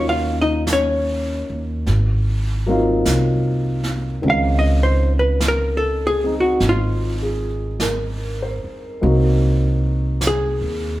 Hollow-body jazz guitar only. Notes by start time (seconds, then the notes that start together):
Already playing: C#4
0.09 F4 F5
0.41 D#4 D#5
0.73 C#4 C#5
4.30 F5
4.59 D#5
4.83 C5
5.19 B4
5.48 A#4
5.77 A4
6.07 G#4
6.40 F#4
6.69 F4
10.27 G#4